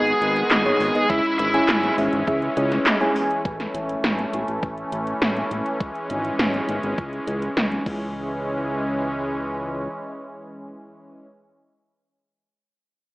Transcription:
Already playing: G#1 D#3 G#3 B3 D#4 G#4 D#5
0.07 closed hi-hat
0.22 G#1, closed hi-hat
0.36 closed hi-hat
0.51 G#1 B3 D#4 G#4 F#5, snare, clap, closed hi-hat
0.66 B3 D#4 G#4 C#5, closed hi-hat
0.80 G#1, open hi-hat
0.95 B3 D#4 G#4 D#5, closed hi-hat
1.10 C#2 E3 C#4 E4 G#4 E5, kick, closed hi-hat
1.25 closed hi-hat
1.39 G#1 E4, closed hi-hat
1.54 C#4 E4 G#4 G#5, closed hi-hat
1.69 G#1, snare, clap, closed hi-hat
1.83 closed hi-hat
1.98 G#1 C#4 E4 G#4 E5, open hi-hat
2.13 G#1, closed hi-hat
2.27 C#2 C#4 E4 G#4 E5, kick, closed hi-hat
2.42 closed hi-hat
2.57 C#2 C#4 E4 G#4 D#5, closed hi-hat
2.72 snare, closed hi-hat
2.86 snare, clap, closed hi-hat
3.01 C#4 E4 G#4 G#5, closed hi-hat
3.16 open hi-hat
3.31 closed hi-hat
3.45 A1 E3 A3 C#4, kick, closed hi-hat
3.60 snare, closed hi-hat
3.75 A1, closed hi-hat
3.89 closed hi-hat
4.04 A1, snare, closed hi-hat
4.19 closed hi-hat
4.33 A1, closed hi-hat
4.48 A1, closed hi-hat
4.63 A1, kick, closed hi-hat
4.78 closed hi-hat
4.92 A1, closed hi-hat
5.07 closed hi-hat
5.22 A1, snare, closed hi-hat
5.37 closed hi-hat
5.51 A1, closed hi-hat
5.66 closed hi-hat
5.80 C#2 G#3, kick, closed hi-hat
5.95 closed hi-hat
6.10 G#1, closed hi-hat
6.25 closed hi-hat
6.39 G#1, snare, closed hi-hat
6.54 closed hi-hat
6.69 G#1, closed hi-hat
6.83 G#1, closed hi-hat
6.98 C#2, kick, closed hi-hat
7.13 closed hi-hat
7.27 C#2, closed hi-hat
7.42 closed hi-hat
7.57 C#2, snare, closed hi-hat
7.72 closed hi-hat
7.86 C#2 E3 G#3 C#4, kick, crash

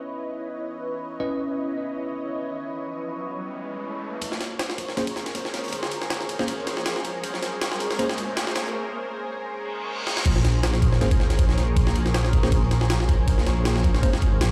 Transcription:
Already playing: C#4 E4 B4 C#5 D#5
1.20 C#4 E4 B4 D#5, riser
4.21 G#4 A#4 C5 C#5, kick, closed hi-hat, ride, riser
4.32 snare
4.41 snare, closed hi-hat, ride
4.59 snare, closed hi-hat, ride
4.69 snare
4.78 kick, closed hi-hat, ride
4.89 snare
4.97 A#3 C#4 G#4 C5, snare, closed hi-hat, ride
5.07 kick, ride
5.16 snare, closed hi-hat
5.26 snare, ride
5.35 kick, snare, closed hi-hat, ride
5.45 snare
5.54 snare, closed hi-hat, ride
5.63 snare, closed hi-hat
5.68 snare, closed hi-hat
5.72 kick, closed hi-hat, ride
5.83 snare
5.91 closed hi-hat, ride
6.02 snare
6.10 snare, closed hi-hat, ride
6.20 snare
6.29 kick, closed hi-hat, ride
6.39 A#3 C#4 G#4 C5, snare
6.48 kick, closed hi-hat, ride
6.58 snare
6.66 snare, closed hi-hat, ride
6.77 snare
6.86 snare, closed hi-hat, ride
6.96 snare
7.04 kick, closed hi-hat, ride
7.24 kick, closed hi-hat, ride
7.34 snare
7.42 snare, closed hi-hat, ride
7.62 snare, closed hi-hat, ride
7.71 snare
7.80 kick, snare, closed hi-hat, ride
7.90 snare, closed hi-hat
7.95 snare, closed hi-hat
7.99 A#3 C#4 G#4 C5, kick, closed hi-hat, ride
8.09 snare
8.18 kick, closed hi-hat, ride
8.37 snare, closed hi-hat, ride
8.47 snare
8.55 snare, closed hi-hat, ride
8.66 snare, closed hi-hat
9.50 reverse cymbal
10.07 snare
10.17 snare
10.26 A#1 G#4 A#4 C5 C#5, kick, crash, ride
10.36 snare
10.45 snare, ride
10.63 snare, ride
10.74 snare
10.82 kick, ride
10.93 snare
11.01 G#1 A#3 C#4 G#4 C5, snare, ride
11.11 kick, ride
11.20 snare
11.30 snare, ride
11.39 A#1, kick, ride
11.49 snare
11.58 snare, ride
11.77 kick, ride
11.87 snare
11.96 ride
12.06 snare
12.14 snare, ride
12.25 snare
12.33 A#1, kick, ride
12.43 A#3 C#4 G#4 C5, snare
12.52 kick, ride
12.71 snare, ride
12.81 snare
12.90 snare, ride
13.00 snare
13.09 kick, ride
13.28 A#1, kick, ride
13.38 snare
13.47 snare, ride
13.65 snare, ride
13.76 snare
13.84 kick, ride
13.95 snare
14.03 G#1 A#3 C#4 G#4 C5, kick, ride
14.13 snare
14.22 kick, ride
14.41 A#1, snare, ride

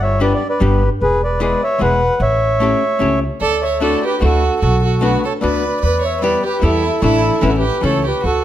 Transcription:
Already playing: G1
0.02 C#5 E5
0.20 G3 B3 D4 G4 B4 D5
0.34 D5
0.49 B4 D5
0.60 G1 G3 B3 D4 G4 B4
1.01 E1 G#4 B4
1.24 B4 D5
1.40 G#3 B3 E4 G#4 B4 D5
1.64 C#5 E5
1.79 E1 G#3 B3 E4 G#4 B4 F#5
2.20 A1 C#5 E5
2.60 A3 C#4 E4 G4
2.99 C#2 A3 C#4 E4 G4
3.41 D2 A4 D5
3.62 C#5 E5
3.80 A3 D4 E4 F#4 A4 D5
4.04 G4 B4
4.21 D2 A3 D4 E4 F#4 A4
4.60 B1 F#4 A4
4.83 F#4 A4
5.01 A3 B3 D4 F#4 B4
5.25 A4 C#5
5.41 D2 A3 B3 D4 F#4 B4 D5
5.81 E2 B4 D5
6.01 C#5 E5
6.21 G3 B3 E4 G4 B4 D5
6.44 G4 B4
6.62 E2 G3 B3 E4 G4 A4
7.02 A1 E3 A3 D4 E4 A4
7.41 A1 E3 A3 C#4 E4 B4
7.48 F#4 A4
7.58 G4 B4
7.81 C#2 E3 A3 C#4 E4 A4 C#5
8.05 G4 B4
8.23 D2 F#4 A4

